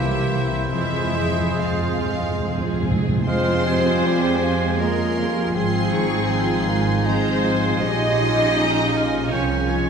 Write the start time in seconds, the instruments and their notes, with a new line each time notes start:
Already playing: double bass section C2, harp C3, cello section E3, bassoon A#3, french horn section A#3 G4, violin section E4 E5, clarinet G4, oboe C5
0.06 viola section G3 C4
0.28 viola section E3 A#3, harp C4 A#4
0.50 viola section G3 C4
0.70 timpani F2, double bass section F2, cello section E3, viola section F3 C4, harp F3, bassoon G#3, french horn section G#3 G#4, violin section E4 E5, clarinet G#4
0.81 timpani F2
0.90 timpani F2, viola section G#3 F4
0.99 timpani F2
1.07 timpani F2
1.14 timpani F2, viola section F3 C4, harp C4
1.24 timpani F2
1.36 timpani F2, viola section G#3 F4
1.47 timpani F2
1.56 timpani F2, double bass section F2, viola section F3 C4, cello section F3, french horn section G#3 G#4, violin section F4 F5
1.64 timpani F2
1.72 timpani F2
1.78 timpani F2, viola section G#3 F4
1.89 timpani F2
1.97 timpani F2, viola section F3 C4, harp C5
2.05 timpani F2
2.13 timpani F2
2.21 timpani F2, viola section G#3 F4
2.30 timpani F2
2.40 timpani F2, double bass section F2, viola section F3 C4, cello section G#3, flute section C4, violin section G#4, harp G#4
2.49 timpani F2
2.57 timpani F2
2.64 timpani F2, viola section G#3 F4
2.73 timpani F2
2.82 timpani F2, viola section F3 C4, harp C4
2.91 timpani F2
3.00 timpani F2
3.06 timpani F2, viola section G#3 F4
3.17 timpani F2
3.26 double bass section F2, timpani F2, harp F3, viola section G#3 F4, bassoon G#3, french horn section G#3 F4, cello section C4, clarinet F4, flute section F4, violin section C5 C6, oboe F5
3.67 viola section G3, harp C4, oboe G#5
4.05 viola section F3 G#4, bassoon G3, clarinet G4, violin section G#5
4.43 bassoon F3, viola section G#3, harp F4
4.79 bassoon G#3, viola section G#3, cello section A#3, harp C4, flute section C#4, clarinet F4, violin section A#4 C6
5.18 harp F3, viola section G3, bassoon A#3
5.54 double bass section G#1, harp G#2, viola section F3 G#4, cello section G#3, french horn section C4, flute section C4, bassoon C4, clarinet F4, violin section G#4 C6, oboe G#5
5.92 harp F3, clarinet D#4, violin section C#6
6.30 viola section F3 F4, bassoon C4, harp C4, violin section C6
6.69 viola section G#3, bassoon A#3
7.06 harp F3, bassoon G#3, cello section C4, flute section F4, viola section F4, violin section C5 A#5
7.44 bassoon G#3, harp G#3, violin section G#5
7.81 double bass section A#1, harp A#2, viola section G3 G4, clarinet C#4, french horn section C#4 F4, cello section D#4, flute section G4, violin section D#5 C6
8.21 harp F3, viola section F4
8.59 viola section F3, oboe A#5, violin section A#5
8.96 oboe F5, violin section G#5
9.30 double bass section C2, harp F3, viola section F3 G#4, bassoon A#3, cello section C#4, clarinet C#4, flute section F4, violin section C#5 G#5, oboe G5
9.69 viola section D#3, harp A#3, oboe G#5